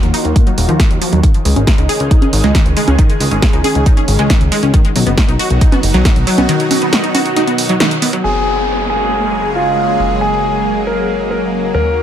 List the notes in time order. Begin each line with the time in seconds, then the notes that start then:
Already playing: D#3 F#3 A#3 F4 F#4
0.03 D#2 A#3, closed hi-hat
0.14 D#4, open hi-hat
0.25 D#2, closed hi-hat
0.36 A#3, kick, closed hi-hat
0.47 F#3, closed hi-hat
0.58 D#1, open hi-hat
0.69 D#2 F3, closed hi-hat
0.80 D#3, kick, snare, closed hi-hat
0.90 D#2, closed hi-hat
1.01 F3, open hi-hat
1.12 D#2 F#3, closed hi-hat
1.23 C#3 D#3 G#3 D#4 G#4, kick, closed hi-hat
1.34 closed hi-hat
1.45 C#2 G#3, open hi-hat
1.56 G#1 C#4, closed hi-hat
1.67 kick, snare, closed hi-hat
1.78 C#2 D#4, closed hi-hat
1.89 G#4, open hi-hat
2.00 C#2, closed hi-hat
2.11 D#4, kick, closed hi-hat
2.22 C#4, closed hi-hat, high conga
2.33 G#1, open hi-hat
2.44 C#2 G#3, snare, closed hi-hat
2.55 D#3, kick, snare, closed hi-hat
2.66 C#2, closed hi-hat
2.77 G#3, open hi-hat
2.88 C#2 C#4, closed hi-hat, high conga
2.98 D#3 C#4, kick, closed hi-hat
3.10 closed hi-hat
3.20 C#2 G#3, open hi-hat
3.31 G#1 C#4, closed hi-hat
3.42 kick, snare, closed hi-hat
3.53 C#2 D#4, closed hi-hat
3.64 G#4, open hi-hat, high conga
3.75 C#2, closed hi-hat
3.86 D#4, kick, closed hi-hat
3.97 C#4, closed hi-hat
4.08 G#1, open hi-hat
4.19 C#2 G#3, closed hi-hat
4.30 D#3, kick, snare, closed hi-hat
4.41 C#2, closed hi-hat
4.52 G#3, open hi-hat
4.63 C#2 C#4, closed hi-hat
4.74 B2 D#3 F#3 D#4 F#4, kick, closed hi-hat
4.85 closed hi-hat
4.96 B1 F#3, open hi-hat
5.07 F#1 B3, closed hi-hat
5.18 kick, snare, closed hi-hat
5.28 B1 D#4, closed hi-hat
5.39 F#4, open hi-hat
5.50 B1, closed hi-hat
5.61 D#4, kick, closed hi-hat
5.72 B3, closed hi-hat, high conga
5.83 F#1, open hi-hat
5.94 B1 F#3, snare, closed hi-hat
6.05 D#3, kick, snare, closed hi-hat
6.16 B1, closed hi-hat
6.27 F#3, open hi-hat
6.38 B1 B3, closed hi-hat, high conga
6.49 D#3, closed hi-hat
6.60 closed hi-hat
6.71 F#3, open hi-hat, high conga
6.82 B3, closed hi-hat
6.93 snare, closed hi-hat
7.04 D#4, closed hi-hat
7.15 F#4, open hi-hat, high conga
7.26 closed hi-hat
7.36 D#4, snare, closed hi-hat
7.47 B3, closed hi-hat
7.58 open hi-hat
7.69 F#3, closed hi-hat
7.80 D#3, snare, closed hi-hat
7.91 closed hi-hat
8.02 B3, open hi-hat
8.13 F#3, closed hi-hat
8.24 F#1 C#3 F#3 G#3 A#3 G#4, downlifter
8.90 G#4
9.56 F4
9.99 F#1
10.21 G#4
10.87 A#4
11.31 A#4
11.74 D#2 D#3 D#4 A#4 F5